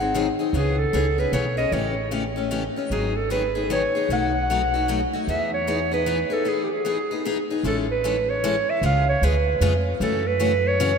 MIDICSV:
0, 0, Header, 1, 4, 480
1, 0, Start_track
1, 0, Key_signature, 4, "major"
1, 0, Tempo, 394477
1, 653, Time_signature, 3, 2, 24, 8
1, 9300, Key_signature, 3, "major"
1, 13363, End_track
2, 0, Start_track
2, 0, Title_t, "Clarinet"
2, 0, Program_c, 0, 71
2, 0, Note_on_c, 0, 78, 76
2, 428, Note_off_c, 0, 78, 0
2, 667, Note_on_c, 0, 68, 71
2, 960, Note_on_c, 0, 69, 81
2, 979, Note_off_c, 0, 68, 0
2, 1452, Note_on_c, 0, 71, 73
2, 1470, Note_off_c, 0, 69, 0
2, 1620, Note_off_c, 0, 71, 0
2, 1627, Note_on_c, 0, 73, 72
2, 1901, Note_off_c, 0, 73, 0
2, 1919, Note_on_c, 0, 75, 75
2, 2102, Note_on_c, 0, 73, 64
2, 2120, Note_off_c, 0, 75, 0
2, 2579, Note_off_c, 0, 73, 0
2, 3558, Note_on_c, 0, 68, 64
2, 3851, Note_on_c, 0, 69, 70
2, 3870, Note_off_c, 0, 68, 0
2, 4025, Note_off_c, 0, 69, 0
2, 4038, Note_on_c, 0, 71, 75
2, 4476, Note_off_c, 0, 71, 0
2, 4533, Note_on_c, 0, 73, 80
2, 4964, Note_off_c, 0, 73, 0
2, 5018, Note_on_c, 0, 78, 89
2, 6211, Note_off_c, 0, 78, 0
2, 6440, Note_on_c, 0, 76, 72
2, 6710, Note_off_c, 0, 76, 0
2, 6742, Note_on_c, 0, 73, 79
2, 7178, Note_off_c, 0, 73, 0
2, 7222, Note_on_c, 0, 71, 82
2, 7699, Note_on_c, 0, 69, 74
2, 7717, Note_off_c, 0, 71, 0
2, 7895, Note_on_c, 0, 68, 65
2, 7913, Note_off_c, 0, 69, 0
2, 8068, Note_off_c, 0, 68, 0
2, 8075, Note_on_c, 0, 67, 44
2, 8191, Note_on_c, 0, 68, 63
2, 8209, Note_off_c, 0, 67, 0
2, 8835, Note_off_c, 0, 68, 0
2, 9334, Note_on_c, 0, 69, 66
2, 9461, Note_off_c, 0, 69, 0
2, 9629, Note_on_c, 0, 71, 74
2, 10100, Note_on_c, 0, 73, 80
2, 10119, Note_off_c, 0, 71, 0
2, 10586, Note_on_c, 0, 76, 79
2, 10604, Note_off_c, 0, 73, 0
2, 10752, Note_off_c, 0, 76, 0
2, 10776, Note_on_c, 0, 77, 76
2, 11037, Note_off_c, 0, 77, 0
2, 11061, Note_on_c, 0, 73, 82
2, 11249, Note_on_c, 0, 71, 77
2, 11267, Note_off_c, 0, 73, 0
2, 12012, Note_off_c, 0, 71, 0
2, 12200, Note_on_c, 0, 69, 82
2, 12497, Note_on_c, 0, 71, 94
2, 12516, Note_off_c, 0, 69, 0
2, 12993, Note_on_c, 0, 73, 96
2, 13011, Note_off_c, 0, 71, 0
2, 13363, Note_off_c, 0, 73, 0
2, 13363, End_track
3, 0, Start_track
3, 0, Title_t, "Steel-string acoustic guitar"
3, 0, Program_c, 1, 25
3, 0, Note_on_c, 1, 68, 46
3, 7, Note_on_c, 1, 63, 42
3, 20, Note_on_c, 1, 60, 39
3, 166, Note_off_c, 1, 68, 0
3, 172, Note_off_c, 1, 60, 0
3, 172, Note_off_c, 1, 63, 0
3, 176, Note_on_c, 1, 51, 71
3, 186, Note_on_c, 1, 54, 76
3, 187, Note_on_c, 1, 60, 78
3, 193, Note_on_c, 1, 63, 79
3, 196, Note_on_c, 1, 68, 83
3, 311, Note_off_c, 1, 51, 0
3, 316, Note_off_c, 1, 54, 0
3, 317, Note_off_c, 1, 60, 0
3, 320, Note_off_c, 1, 63, 0
3, 321, Note_off_c, 1, 68, 0
3, 475, Note_on_c, 1, 68, 47
3, 487, Note_on_c, 1, 63, 46
3, 499, Note_on_c, 1, 60, 41
3, 647, Note_off_c, 1, 68, 0
3, 653, Note_off_c, 1, 63, 0
3, 657, Note_on_c, 1, 49, 56
3, 659, Note_off_c, 1, 60, 0
3, 660, Note_on_c, 1, 52, 57
3, 667, Note_on_c, 1, 59, 55
3, 668, Note_on_c, 1, 61, 54
3, 675, Note_on_c, 1, 68, 59
3, 914, Note_off_c, 1, 49, 0
3, 916, Note_off_c, 1, 52, 0
3, 919, Note_off_c, 1, 59, 0
3, 920, Note_off_c, 1, 61, 0
3, 923, Note_off_c, 1, 68, 0
3, 1134, Note_on_c, 1, 49, 62
3, 1134, Note_on_c, 1, 52, 67
3, 1144, Note_on_c, 1, 61, 74
3, 1145, Note_on_c, 1, 59, 69
3, 1150, Note_on_c, 1, 68, 82
3, 1271, Note_off_c, 1, 49, 0
3, 1271, Note_off_c, 1, 52, 0
3, 1276, Note_off_c, 1, 61, 0
3, 1277, Note_off_c, 1, 59, 0
3, 1279, Note_off_c, 1, 68, 0
3, 1437, Note_on_c, 1, 68, 47
3, 1457, Note_on_c, 1, 61, 45
3, 1463, Note_on_c, 1, 59, 36
3, 1606, Note_off_c, 1, 59, 0
3, 1609, Note_off_c, 1, 68, 0
3, 1612, Note_off_c, 1, 61, 0
3, 1616, Note_on_c, 1, 49, 66
3, 1618, Note_on_c, 1, 52, 77
3, 1620, Note_on_c, 1, 59, 73
3, 1626, Note_on_c, 1, 61, 72
3, 1631, Note_on_c, 1, 68, 80
3, 1752, Note_off_c, 1, 49, 0
3, 1754, Note_off_c, 1, 52, 0
3, 1755, Note_off_c, 1, 59, 0
3, 1758, Note_off_c, 1, 61, 0
3, 1760, Note_off_c, 1, 68, 0
3, 1911, Note_on_c, 1, 68, 46
3, 1925, Note_on_c, 1, 61, 43
3, 1934, Note_on_c, 1, 59, 40
3, 2086, Note_off_c, 1, 68, 0
3, 2093, Note_off_c, 1, 61, 0
3, 2094, Note_on_c, 1, 49, 51
3, 2097, Note_off_c, 1, 59, 0
3, 2098, Note_on_c, 1, 52, 55
3, 2106, Note_on_c, 1, 67, 60
3, 2107, Note_on_c, 1, 61, 53
3, 2108, Note_on_c, 1, 57, 56
3, 2354, Note_off_c, 1, 49, 0
3, 2356, Note_off_c, 1, 52, 0
3, 2360, Note_off_c, 1, 61, 0
3, 2360, Note_off_c, 1, 67, 0
3, 2361, Note_off_c, 1, 57, 0
3, 2569, Note_on_c, 1, 49, 67
3, 2574, Note_on_c, 1, 52, 64
3, 2575, Note_on_c, 1, 57, 63
3, 2578, Note_on_c, 1, 61, 68
3, 2581, Note_on_c, 1, 67, 68
3, 2710, Note_off_c, 1, 49, 0
3, 2712, Note_off_c, 1, 52, 0
3, 2713, Note_off_c, 1, 57, 0
3, 2714, Note_off_c, 1, 61, 0
3, 2715, Note_off_c, 1, 67, 0
3, 2870, Note_on_c, 1, 67, 46
3, 2883, Note_on_c, 1, 61, 36
3, 2895, Note_on_c, 1, 57, 36
3, 3044, Note_off_c, 1, 57, 0
3, 3045, Note_off_c, 1, 61, 0
3, 3046, Note_off_c, 1, 67, 0
3, 3051, Note_on_c, 1, 49, 69
3, 3055, Note_on_c, 1, 52, 67
3, 3059, Note_on_c, 1, 57, 70
3, 3060, Note_on_c, 1, 61, 85
3, 3064, Note_on_c, 1, 67, 80
3, 3191, Note_off_c, 1, 49, 0
3, 3193, Note_off_c, 1, 52, 0
3, 3195, Note_off_c, 1, 57, 0
3, 3195, Note_off_c, 1, 61, 0
3, 3197, Note_off_c, 1, 67, 0
3, 3362, Note_on_c, 1, 67, 40
3, 3375, Note_on_c, 1, 61, 37
3, 3389, Note_on_c, 1, 57, 33
3, 3532, Note_off_c, 1, 67, 0
3, 3539, Note_off_c, 1, 61, 0
3, 3541, Note_on_c, 1, 51, 45
3, 3546, Note_off_c, 1, 57, 0
3, 3547, Note_on_c, 1, 54, 60
3, 3551, Note_on_c, 1, 59, 52
3, 3551, Note_on_c, 1, 63, 61
3, 3555, Note_on_c, 1, 68, 58
3, 3798, Note_off_c, 1, 51, 0
3, 3801, Note_off_c, 1, 54, 0
3, 3803, Note_off_c, 1, 59, 0
3, 3803, Note_off_c, 1, 63, 0
3, 3805, Note_off_c, 1, 68, 0
3, 4017, Note_on_c, 1, 51, 65
3, 4020, Note_on_c, 1, 54, 68
3, 4026, Note_on_c, 1, 63, 67
3, 4030, Note_on_c, 1, 59, 75
3, 4033, Note_on_c, 1, 68, 71
3, 4154, Note_off_c, 1, 51, 0
3, 4156, Note_off_c, 1, 54, 0
3, 4159, Note_off_c, 1, 63, 0
3, 4161, Note_off_c, 1, 59, 0
3, 4162, Note_off_c, 1, 68, 0
3, 4319, Note_on_c, 1, 68, 45
3, 4326, Note_on_c, 1, 63, 42
3, 4340, Note_on_c, 1, 59, 33
3, 4490, Note_off_c, 1, 59, 0
3, 4492, Note_off_c, 1, 68, 0
3, 4495, Note_off_c, 1, 63, 0
3, 4502, Note_on_c, 1, 51, 79
3, 4504, Note_on_c, 1, 54, 78
3, 4505, Note_on_c, 1, 59, 68
3, 4515, Note_on_c, 1, 68, 86
3, 4517, Note_on_c, 1, 63, 71
3, 4637, Note_off_c, 1, 51, 0
3, 4638, Note_off_c, 1, 54, 0
3, 4638, Note_off_c, 1, 59, 0
3, 4644, Note_off_c, 1, 68, 0
3, 4645, Note_off_c, 1, 63, 0
3, 4805, Note_on_c, 1, 68, 44
3, 4822, Note_on_c, 1, 63, 40
3, 4831, Note_on_c, 1, 59, 35
3, 4975, Note_off_c, 1, 68, 0
3, 4983, Note_off_c, 1, 63, 0
3, 4988, Note_off_c, 1, 59, 0
3, 4991, Note_on_c, 1, 47, 57
3, 4993, Note_on_c, 1, 54, 57
3, 4998, Note_on_c, 1, 57, 57
3, 5004, Note_on_c, 1, 63, 61
3, 5008, Note_on_c, 1, 66, 57
3, 5244, Note_off_c, 1, 47, 0
3, 5245, Note_off_c, 1, 54, 0
3, 5247, Note_off_c, 1, 57, 0
3, 5250, Note_off_c, 1, 63, 0
3, 5252, Note_off_c, 1, 66, 0
3, 5475, Note_on_c, 1, 47, 71
3, 5478, Note_on_c, 1, 54, 73
3, 5484, Note_on_c, 1, 57, 68
3, 5487, Note_on_c, 1, 63, 78
3, 5493, Note_on_c, 1, 66, 73
3, 5604, Note_off_c, 1, 47, 0
3, 5606, Note_off_c, 1, 54, 0
3, 5609, Note_off_c, 1, 57, 0
3, 5610, Note_off_c, 1, 63, 0
3, 5613, Note_off_c, 1, 66, 0
3, 5765, Note_on_c, 1, 66, 41
3, 5782, Note_on_c, 1, 63, 44
3, 5791, Note_on_c, 1, 57, 36
3, 5935, Note_off_c, 1, 66, 0
3, 5938, Note_off_c, 1, 57, 0
3, 5940, Note_off_c, 1, 63, 0
3, 5940, Note_on_c, 1, 47, 71
3, 5947, Note_on_c, 1, 54, 75
3, 5951, Note_on_c, 1, 66, 90
3, 5953, Note_on_c, 1, 57, 75
3, 5955, Note_on_c, 1, 63, 74
3, 6077, Note_off_c, 1, 47, 0
3, 6080, Note_off_c, 1, 54, 0
3, 6082, Note_off_c, 1, 66, 0
3, 6083, Note_off_c, 1, 57, 0
3, 6084, Note_off_c, 1, 63, 0
3, 6247, Note_on_c, 1, 66, 50
3, 6259, Note_on_c, 1, 63, 43
3, 6271, Note_on_c, 1, 57, 39
3, 6416, Note_off_c, 1, 66, 0
3, 6422, Note_off_c, 1, 63, 0
3, 6427, Note_off_c, 1, 57, 0
3, 6428, Note_on_c, 1, 52, 50
3, 6432, Note_on_c, 1, 59, 60
3, 6434, Note_on_c, 1, 63, 58
3, 6439, Note_on_c, 1, 68, 65
3, 6683, Note_off_c, 1, 52, 0
3, 6685, Note_off_c, 1, 59, 0
3, 6686, Note_off_c, 1, 63, 0
3, 6688, Note_off_c, 1, 68, 0
3, 6904, Note_on_c, 1, 52, 65
3, 6910, Note_on_c, 1, 59, 73
3, 6913, Note_on_c, 1, 63, 73
3, 6915, Note_on_c, 1, 68, 77
3, 7039, Note_off_c, 1, 52, 0
3, 7042, Note_off_c, 1, 59, 0
3, 7044, Note_off_c, 1, 63, 0
3, 7044, Note_off_c, 1, 68, 0
3, 7197, Note_on_c, 1, 68, 49
3, 7211, Note_on_c, 1, 63, 41
3, 7223, Note_on_c, 1, 59, 42
3, 7363, Note_off_c, 1, 59, 0
3, 7371, Note_off_c, 1, 63, 0
3, 7372, Note_off_c, 1, 68, 0
3, 7377, Note_on_c, 1, 52, 72
3, 7377, Note_on_c, 1, 59, 75
3, 7385, Note_on_c, 1, 63, 74
3, 7391, Note_on_c, 1, 68, 78
3, 7516, Note_off_c, 1, 52, 0
3, 7516, Note_off_c, 1, 59, 0
3, 7520, Note_off_c, 1, 63, 0
3, 7523, Note_off_c, 1, 68, 0
3, 7664, Note_on_c, 1, 68, 49
3, 7680, Note_on_c, 1, 63, 42
3, 7688, Note_on_c, 1, 59, 36
3, 7838, Note_off_c, 1, 59, 0
3, 7845, Note_off_c, 1, 68, 0
3, 7845, Note_on_c, 1, 52, 47
3, 7848, Note_off_c, 1, 63, 0
3, 7853, Note_on_c, 1, 59, 58
3, 7862, Note_on_c, 1, 63, 51
3, 7864, Note_on_c, 1, 68, 55
3, 8112, Note_off_c, 1, 52, 0
3, 8115, Note_off_c, 1, 59, 0
3, 8120, Note_off_c, 1, 63, 0
3, 8121, Note_off_c, 1, 68, 0
3, 8332, Note_on_c, 1, 52, 65
3, 8343, Note_on_c, 1, 59, 65
3, 8348, Note_on_c, 1, 63, 72
3, 8348, Note_on_c, 1, 68, 75
3, 8473, Note_off_c, 1, 52, 0
3, 8479, Note_off_c, 1, 59, 0
3, 8481, Note_off_c, 1, 63, 0
3, 8481, Note_off_c, 1, 68, 0
3, 8649, Note_on_c, 1, 68, 43
3, 8666, Note_on_c, 1, 63, 39
3, 8673, Note_on_c, 1, 59, 38
3, 8814, Note_off_c, 1, 59, 0
3, 8818, Note_off_c, 1, 68, 0
3, 8825, Note_on_c, 1, 52, 64
3, 8826, Note_off_c, 1, 63, 0
3, 8828, Note_on_c, 1, 59, 68
3, 8839, Note_on_c, 1, 63, 86
3, 8840, Note_on_c, 1, 68, 76
3, 8960, Note_off_c, 1, 52, 0
3, 8961, Note_off_c, 1, 59, 0
3, 8967, Note_off_c, 1, 63, 0
3, 8967, Note_off_c, 1, 68, 0
3, 9131, Note_on_c, 1, 68, 49
3, 9138, Note_on_c, 1, 63, 44
3, 9152, Note_on_c, 1, 59, 37
3, 9298, Note_off_c, 1, 68, 0
3, 9300, Note_on_c, 1, 52, 60
3, 9302, Note_off_c, 1, 63, 0
3, 9303, Note_off_c, 1, 59, 0
3, 9308, Note_on_c, 1, 61, 58
3, 9309, Note_on_c, 1, 56, 54
3, 9313, Note_on_c, 1, 64, 68
3, 9319, Note_on_c, 1, 69, 67
3, 9558, Note_off_c, 1, 52, 0
3, 9562, Note_off_c, 1, 61, 0
3, 9563, Note_off_c, 1, 56, 0
3, 9565, Note_off_c, 1, 64, 0
3, 9568, Note_off_c, 1, 69, 0
3, 9783, Note_on_c, 1, 52, 74
3, 9789, Note_on_c, 1, 56, 66
3, 9795, Note_on_c, 1, 61, 76
3, 9799, Note_on_c, 1, 64, 75
3, 9802, Note_on_c, 1, 69, 81
3, 9918, Note_off_c, 1, 52, 0
3, 9921, Note_off_c, 1, 56, 0
3, 9924, Note_off_c, 1, 61, 0
3, 9926, Note_off_c, 1, 64, 0
3, 9927, Note_off_c, 1, 69, 0
3, 10266, Note_on_c, 1, 52, 83
3, 10266, Note_on_c, 1, 56, 87
3, 10270, Note_on_c, 1, 61, 82
3, 10277, Note_on_c, 1, 69, 86
3, 10280, Note_on_c, 1, 64, 83
3, 10399, Note_off_c, 1, 52, 0
3, 10399, Note_off_c, 1, 56, 0
3, 10401, Note_off_c, 1, 61, 0
3, 10405, Note_off_c, 1, 69, 0
3, 10406, Note_off_c, 1, 64, 0
3, 10742, Note_on_c, 1, 49, 61
3, 10743, Note_on_c, 1, 56, 62
3, 10745, Note_on_c, 1, 65, 64
3, 10750, Note_on_c, 1, 59, 63
3, 10751, Note_on_c, 1, 68, 69
3, 10998, Note_off_c, 1, 49, 0
3, 10999, Note_off_c, 1, 56, 0
3, 11000, Note_off_c, 1, 65, 0
3, 11002, Note_off_c, 1, 59, 0
3, 11003, Note_off_c, 1, 68, 0
3, 11229, Note_on_c, 1, 49, 76
3, 11233, Note_on_c, 1, 56, 84
3, 11234, Note_on_c, 1, 59, 79
3, 11240, Note_on_c, 1, 65, 77
3, 11243, Note_on_c, 1, 68, 86
3, 11360, Note_off_c, 1, 49, 0
3, 11362, Note_off_c, 1, 56, 0
3, 11363, Note_off_c, 1, 59, 0
3, 11366, Note_off_c, 1, 65, 0
3, 11367, Note_off_c, 1, 68, 0
3, 11698, Note_on_c, 1, 49, 91
3, 11701, Note_on_c, 1, 56, 78
3, 11705, Note_on_c, 1, 59, 92
3, 11705, Note_on_c, 1, 65, 92
3, 11712, Note_on_c, 1, 68, 95
3, 11834, Note_off_c, 1, 49, 0
3, 11836, Note_off_c, 1, 56, 0
3, 11838, Note_off_c, 1, 59, 0
3, 11838, Note_off_c, 1, 65, 0
3, 11841, Note_off_c, 1, 68, 0
3, 12179, Note_on_c, 1, 49, 59
3, 12188, Note_on_c, 1, 52, 63
3, 12190, Note_on_c, 1, 57, 66
3, 12191, Note_on_c, 1, 61, 65
3, 12196, Note_on_c, 1, 66, 70
3, 12435, Note_off_c, 1, 49, 0
3, 12440, Note_off_c, 1, 52, 0
3, 12441, Note_off_c, 1, 57, 0
3, 12441, Note_off_c, 1, 61, 0
3, 12444, Note_off_c, 1, 66, 0
3, 12648, Note_on_c, 1, 49, 77
3, 12654, Note_on_c, 1, 52, 86
3, 12656, Note_on_c, 1, 57, 81
3, 12661, Note_on_c, 1, 61, 83
3, 12664, Note_on_c, 1, 66, 92
3, 12789, Note_off_c, 1, 49, 0
3, 12791, Note_off_c, 1, 52, 0
3, 12792, Note_off_c, 1, 57, 0
3, 12795, Note_off_c, 1, 61, 0
3, 12796, Note_off_c, 1, 66, 0
3, 13140, Note_on_c, 1, 49, 91
3, 13140, Note_on_c, 1, 52, 86
3, 13144, Note_on_c, 1, 57, 85
3, 13149, Note_on_c, 1, 61, 87
3, 13152, Note_on_c, 1, 66, 94
3, 13274, Note_off_c, 1, 49, 0
3, 13274, Note_off_c, 1, 52, 0
3, 13276, Note_off_c, 1, 57, 0
3, 13279, Note_off_c, 1, 61, 0
3, 13280, Note_off_c, 1, 66, 0
3, 13363, End_track
4, 0, Start_track
4, 0, Title_t, "Upright bass"
4, 0, Program_c, 2, 32
4, 0, Note_on_c, 2, 32, 69
4, 357, Note_off_c, 2, 32, 0
4, 645, Note_on_c, 2, 37, 77
4, 1033, Note_off_c, 2, 37, 0
4, 1133, Note_on_c, 2, 37, 67
4, 1542, Note_off_c, 2, 37, 0
4, 1609, Note_on_c, 2, 35, 66
4, 2020, Note_off_c, 2, 35, 0
4, 2091, Note_on_c, 2, 33, 66
4, 3246, Note_off_c, 2, 33, 0
4, 3530, Note_on_c, 2, 32, 67
4, 4686, Note_off_c, 2, 32, 0
4, 4973, Note_on_c, 2, 35, 66
4, 6129, Note_off_c, 2, 35, 0
4, 6415, Note_on_c, 2, 40, 72
4, 7570, Note_off_c, 2, 40, 0
4, 9289, Note_on_c, 2, 33, 76
4, 10444, Note_off_c, 2, 33, 0
4, 10727, Note_on_c, 2, 37, 75
4, 11115, Note_off_c, 2, 37, 0
4, 11214, Note_on_c, 2, 38, 80
4, 11623, Note_off_c, 2, 38, 0
4, 11687, Note_on_c, 2, 41, 77
4, 12099, Note_off_c, 2, 41, 0
4, 12171, Note_on_c, 2, 42, 87
4, 13323, Note_off_c, 2, 42, 0
4, 13363, End_track
0, 0, End_of_file